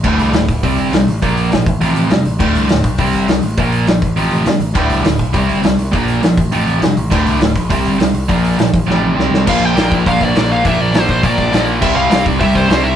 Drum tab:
CC |x-------|--------|x-------|--------|
HH |-ooooooo|oooooooo|-ooooooo|oooooooo|
SD |--o---o-|--o---o-|--o---o-|--o---o-|
BD |o--oo---|o--o----|o--oo---|o--o----|

CC |x-------|--------|x-------|--------|
HH |-ooooooo|oooooooo|-ooooooo|oooo----|
SD |--o---o-|--o---o-|--o---o-|--o-o-oo|
BD |o--oo---|o--o----|o--oo---|o--o----|

CC |x-------|--------|x-------|
HH |--o-o-o-|o-o-o-o-|--o-o-o-|
SD |--o---o-|--o---o-|--o---o-|
BD |o--ooo--|o--ooo--|o--ooo--|